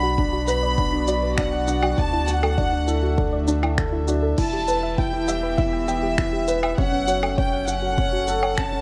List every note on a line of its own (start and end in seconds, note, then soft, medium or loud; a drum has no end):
0.00 1.95 B1 medium
0.00 1.98 B2 medium
0.00 0.18 D4 medium
0.00 4.38 F#4 medium
0.00 0.08 F#4 medium
0.00 0.54 A4 medium
0.00 0.17 F#5 medium
0.00 0.54 F#5 medium
0.00 0.44 B5 loud
0.08 2.94 B3 medium
0.18 0.30 D4 medium
0.18 0.47 D4 medium
0.18 kick loud
0.33 0.38 F#4 loud
0.48 0.56 B4 loud
0.48 0.77 B4 medium
0.48 1.34 B5 loud
0.48 shaker medium
0.63 0.75 D5 loud
0.63 2.94 D5 medium
0.78 1.07 D4 medium
0.78 0.90 F#5 medium
0.78 kick loud
0.93 0.98 D4 loud
1.08 1.13 F#4 medium
1.08 1.37 D5 medium
1.08 shaker medium
1.23 1.31 B4 medium
1.38 1.67 D4 medium
1.38 1.50 D5 loud
1.38 1.98 F#5 loud
1.38 finger snap medium
1.38 kick loud
1.53 1.65 F#5 loud
1.67 1.73 D4 loud
1.67 1.97 F#5 medium
1.67 shaker medium
1.83 1.88 F#4 medium
1.83 low woodblock medium
1.98 4.35 D2 medium
1.98 4.38 D3 medium
1.98 2.10 D4 medium
1.98 2.26 D4 medium
1.98 2.28 A5 loud
1.98 kick loud
2.13 2.18 E4 loud
2.28 2.56 F#4 medium
2.28 2.36 F#4 loud
2.28 3.48 F#5 loud
2.28 shaker medium
2.43 2.55 A4 loud
2.43 low woodblock medium
2.58 2.86 D4 medium
2.58 2.70 D5 medium
2.58 kick loud
2.63 4.38 A3 medium
2.73 2.78 D4 loud
2.87 2.93 E4 medium
2.87 3.16 A4 medium
2.87 7.74 E5 medium
2.87 shaker medium
3.03 3.11 F#4 medium
3.18 3.46 D4 medium
3.18 3.30 A4 loud
3.18 kick loud
3.33 3.45 D5 loud
3.48 3.53 D4 loud
3.48 3.76 D4 medium
3.48 shaker medium
3.63 3.68 E4 medium
3.63 low woodblock medium
3.78 3.90 D4 medium
3.78 3.95 A4 medium
3.78 finger snap medium
3.78 kick loud
3.92 3.98 E4 loud
4.08 4.36 D4 medium
4.08 4.16 F#4 loud
4.08 shaker medium
4.23 4.35 A4 medium
4.38 6.75 E1 medium
4.38 6.78 E3 medium
4.38 4.50 E4 medium
4.38 4.66 E4 medium
4.38 4.95 A5 loud
4.38 kick loud
4.38 crash medium
4.53 4.58 G4 loud
4.68 4.97 B4 medium
4.68 4.76 B4 loud
4.68 shaker medium
4.83 4.95 E5 loud
4.98 5.27 E4 medium
4.98 6.78 G4 medium
4.98 5.10 G5 medium
4.98 5.58 G5 loud
4.98 kick loud
5.07 7.61 B3 medium
5.13 5.18 E4 loud
5.28 5.33 G4 medium
5.28 5.57 E5 medium
5.28 shaker medium
5.43 5.51 B4 medium
5.58 5.87 E4 medium
5.58 5.70 E5 loud
5.58 6.78 E5 loud
5.58 kick loud
5.73 5.85 G5 loud
5.88 5.93 E4 loud
5.88 6.17 G5 medium
5.88 shaker medium
6.03 6.08 G4 medium
6.18 6.30 E4 medium
6.18 6.47 E4 medium
6.18 finger snap medium
6.18 kick medium
6.33 6.38 G4 loud
6.48 6.56 B4 loud
6.48 6.77 B4 medium
6.48 shaker medium
6.63 6.75 E5 medium
6.63 low woodblock medium
6.78 8.81 F#1 medium
6.78 8.81 F#3 medium
6.78 7.07 C#4 medium
6.78 6.90 F#5 medium
6.78 7.34 F#5 loud
6.78 kick loud
6.92 6.98 C#4 loud
7.08 7.13 F#4 medium
7.08 7.37 C#5 medium
7.08 shaker medium
7.23 8.81 C#4 medium
7.23 7.31 A4 medium
7.23 low woodblock medium
7.38 7.67 C#4 medium
7.38 7.50 C#5 loud
7.38 7.68 G5 loud
7.38 kick loud
7.53 7.65 F#5 loud
7.58 8.81 F#5 medium
7.68 7.73 C#4 loud
7.68 7.96 F#5 medium
7.68 8.58 F#5 loud
7.68 shaker medium
7.82 7.88 F#4 medium
7.82 8.81 A4 medium
7.98 8.10 C#4 medium
7.98 8.26 C#4 medium
7.98 kick loud
8.13 8.18 F#4 loud
8.28 8.36 A4 loud
8.28 8.57 A4 medium
8.28 shaker medium
8.43 8.55 C#5 loud
8.43 low woodblock medium
8.57 8.81 C#4 medium
8.57 8.70 F#5 medium
8.57 8.81 A5 loud
8.57 finger snap medium
8.57 kick loud
8.73 8.78 C#4 loud